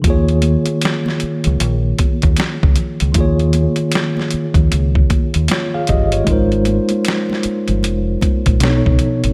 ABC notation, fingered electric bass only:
X:1
M:4/4
L:1/16
Q:"Swing 16ths" 1/4=77
K:Ebmix
V:1 name="Fingered electric bass" clef=bass
E,,3 z4 D,, B,,,2 z E,, z D,, z D,, | E,,3 z4 E,, D,,2 z E,, z2 G,,,2 | A,,,3 z4 G,,, F,,,2 z B,,, =B,,, ^C,, z A,,, |]